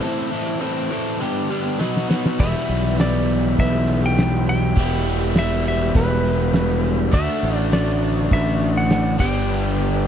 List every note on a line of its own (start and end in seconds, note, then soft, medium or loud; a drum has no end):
0.00 0.17 A2 medium
0.00 0.17 E3 loud
0.00 0.17 C4 loud
0.00 0.16 E4 loud
0.00 0.14 A4 loud
0.00 0.44 E5 loud
0.15 0.48 C4 soft
0.15 0.46 E4 medium
0.15 0.44 A4 medium
0.31 0.59 A2 medium
0.31 0.59 E3 medium
0.31 0.60 C4 medium
0.31 0.60 E4 medium
0.31 0.61 A4 medium
0.44 0.61 E4 medium
0.44 0.61 A4 medium
0.44 1.76 D5 loud
0.49 0.60 C4 soft
0.60 0.91 A2 medium
0.60 0.90 E3 medium
0.60 0.91 C4 medium
0.60 0.91 E4 medium
0.60 0.92 A4 loud
0.91 1.19 A2 medium
0.91 1.18 E3 medium
0.91 1.19 C4 medium
0.91 1.21 E4 medium
0.95 1.21 A4 medium
1.19 1.50 G2 medium
1.19 1.50 D3 medium
1.19 1.47 E3 medium
1.19 1.49 G3 medium
1.19 1.50 B3 medium
1.19 1.51 D4 medium
1.19 1.51 G4 medium
1.49 1.78 G2 medium
1.49 1.78 D3 medium
1.49 1.65 E3 medium
1.49 1.64 G3 medium
1.49 1.63 B3 medium
1.49 1.79 D4 medium
1.49 1.61 G4 medium
1.63 1.78 E3 soft
1.63 1.78 G3 soft
1.63 1.78 B3 medium
1.63 1.79 G4 medium
1.78 2.09 B2 medium
1.78 2.06 F#3 medium
1.78 2.08 B3 medium
1.78 2.09 D#4 medium
1.78 2.10 F#4 loud
1.78 snare medium
1.97 snare medium
2.08 2.37 B2 medium
2.08 2.24 F#3 medium
2.08 2.25 B3 medium
2.08 2.24 D#4 medium
2.08 2.22 F#4 medium
2.08 snare loud
2.23 2.40 B3 soft
2.23 2.40 D#4 medium
2.23 2.39 F#4 medium
2.23 snare medium
2.37 2.53 E1 loud
2.37 2.69 E2 medium
2.37 2.69 B2 medium
2.37 2.67 E3 medium
2.37 2.69 G3 medium
2.37 2.69 B3 medium
2.37 4.73 E4 medium
2.37 4.73 G4 medium
2.37 2.70 G4 medium
2.37 4.73 B4 medium
2.37 2.95 E5 loud
2.37 kick loud
2.37 crash loud
2.37 crash medium
2.42 4.76 E4 loud
2.68 3.54 B1 loud
2.68 2.84 E3 medium
2.68 2.84 G3 medium
2.68 2.82 B3 medium
2.68 2.81 G4 medium
2.68 crash medium
2.82 2.97 E3 soft
2.82 2.98 G3 soft
2.82 2.98 B3 soft
2.82 2.98 G4 medium
2.97 3.28 E2 medium
2.97 3.28 B2 medium
2.97 3.25 E3 medium
2.97 3.26 G3 medium
2.97 3.27 B3 medium
2.97 3.28 G4 medium
2.97 3.59 D5 loud
2.97 snare loud
2.97 crash medium
3.26 3.42 E3 medium
3.26 3.43 G3 medium
3.26 3.42 B3 medium
3.26 3.40 G4 medium
3.26 crash medium
3.42 3.74 E3 soft
3.42 3.73 G3 soft
3.42 3.72 B3 medium
3.42 3.71 G4 medium
3.59 4.73 B1 loud
3.59 4.05 E5 loud
3.59 kick loud
3.59 crash medium
3.72 3.85 E3 soft
3.72 3.86 G3 soft
3.72 3.87 B3 medium
3.72 3.88 G4 medium
3.86 4.02 E3 medium
3.86 4.03 G3 medium
3.86 4.02 B3 medium
3.86 4.00 G4 medium
3.86 crash medium
4.01 4.15 E3 soft
4.01 4.16 G3 medium
4.01 4.17 B3 medium
4.01 4.17 G4 medium
4.06 4.48 G5 loud
4.16 4.31 E2 medium
4.16 4.32 B2 medium
4.16 4.32 E3 medium
4.16 4.31 G3 medium
4.16 4.30 B3 medium
4.16 4.29 G4 medium
4.16 snare loud
4.16 crash medium
4.30 4.61 G3 soft
4.30 4.60 B3 soft
4.30 4.59 G4 medium
4.34 4.63 E3 soft
4.47 5.33 G5 loud
4.47 crash medium
4.60 4.77 G3 soft
4.60 4.77 B3 soft
4.60 4.76 G4 medium
4.64 4.76 E3 soft
4.74 5.91 E1 loud
4.74 5.06 E2 medium
4.74 5.07 B2 medium
4.74 5.05 E3 loud
4.74 5.06 G3 medium
4.74 7.10 E4 medium
4.74 7.10 G4 medium
4.74 7.10 B4 medium
4.74 kick loud
4.74 crash medium
4.78 5.07 B3 loud
4.78 7.13 E4 loud
4.78 5.08 G4 loud
5.06 5.21 E3 medium
5.06 5.22 G3 medium
5.06 5.21 B3 medium
5.06 5.19 G4 medium
5.06 crash medium
5.20 5.35 E3 soft
5.20 5.36 G3 medium
5.20 5.36 B3 medium
5.20 5.36 G4 medium
5.35 5.65 E2 medium
5.35 5.66 B2 medium
5.35 5.64 E3 medium
5.35 5.66 G3 loud
5.35 5.66 B3 medium
5.35 5.67 G4 medium
5.35 5.67 E5 loud
5.35 snare loud
5.35 crash medium
5.65 5.80 E3 medium
5.65 5.81 G3 medium
5.65 5.81 B3 medium
5.65 5.80 G4 medium
5.65 5.94 E5 medium
5.65 crash medium
5.81 6.12 E3 soft
5.81 6.11 G3 soft
5.81 6.11 B3 soft
5.81 6.10 G4 medium
5.95 7.09 E1 loud
5.95 6.81 B4 medium
5.95 kick loud
5.95 crash medium
6.11 6.24 E3 soft
6.11 6.26 G3 soft
6.11 6.26 B3 medium
6.11 6.25 G4 medium
6.25 6.40 E3 medium
6.25 6.41 G3 medium
6.25 6.40 B3 medium
6.25 6.39 G4 medium
6.25 crash medium
6.40 6.54 E3 soft
6.40 6.54 G3 medium
6.40 6.54 B3 medium
6.40 6.55 G4 medium
6.53 6.69 E2 medium
6.53 6.69 B2 medium
6.53 6.69 E3 medium
6.53 6.69 G3 medium
6.53 6.69 B3 medium
6.53 6.67 G4 medium
6.53 snare loud
6.53 crash medium
6.68 7.13 E3 medium
6.68 7.14 G3 medium
6.68 7.14 B3 medium
6.68 7.13 G4 medium
6.84 crash medium
7.11 7.27 D2 loud
7.11 7.43 D3 medium
7.11 7.43 A3 medium
7.11 9.18 D4 medium
7.11 7.44 D4 loud
7.11 9.17 F#4 medium
7.11 9.17 A4 medium
7.11 7.57 E5 loud
7.11 kick loud
7.11 crash medium
7.16 7.44 F#4 medium
7.43 8.28 A1 medium
7.43 7.58 D3 medium
7.43 7.59 A3 medium
7.43 7.59 D4 medium
7.43 crash medium
7.47 7.58 F#4 medium
7.57 7.72 D4 soft
7.57 7.73 F#4 medium
7.57 7.69 D5 loud
7.62 7.72 A3 soft
7.72 8.02 D3 medium
7.72 8.02 A3 medium
7.72 8.03 D4 loud
7.72 8.03 F#4 medium
7.72 8.33 D5 medium
7.72 snare loud
7.72 crash medium
8.02 8.17 D3 medium
8.02 8.18 A3 medium
8.02 8.18 D4 medium
8.02 crash medium
8.06 8.16 F#4 medium
8.17 8.47 D4 soft
8.17 8.45 F#4 soft
8.21 8.49 A3 soft
8.31 9.16 A1 loud
8.31 8.78 E5 loud
8.31 kick loud
8.31 crash medium
8.47 8.62 A3 soft
8.47 8.62 D4 soft
8.47 8.61 F#4 soft
8.61 8.76 D3 medium
8.61 8.77 A3 medium
8.61 8.75 D4 medium
8.61 8.74 F#4 medium
8.61 crash medium
8.75 8.89 A3 medium
8.75 8.89 D4 medium
8.75 8.90 F#4 medium
8.75 9.20 F#5 loud
8.90 9.05 D3 medium
8.90 9.05 A3 medium
8.90 9.05 D4 medium
8.90 9.03 F#4 medium
8.90 snare loud
8.90 crash medium
9.04 9.20 A3 soft
9.04 9.20 D4 medium
9.04 9.20 F#4 medium
9.19 10.07 G1 medium
9.19 9.79 G2 medium
9.19 9.80 D3 medium
9.19 9.78 G3 medium
9.19 9.79 B3 medium
9.19 9.80 D4 medium
9.19 9.40 D#4 medium
9.19 9.81 G4 medium
9.19 9.40 G#4 medium
9.19 9.41 C5 medium
9.19 10.07 G5 loud
9.19 kick loud
9.19 crash loud
9.40 10.07 D4 medium
9.40 10.07 G4 medium
9.40 10.07 B4 medium
9.49 crash medium
9.78 9.94 G3 medium
9.78 9.94 B3 medium
9.78 9.93 D4 medium
9.78 9.92 G4 medium
9.78 crash medium
9.93 10.07 G3 soft
9.93 10.07 B3 soft
9.93 10.07 D4 medium
9.93 10.07 G4 medium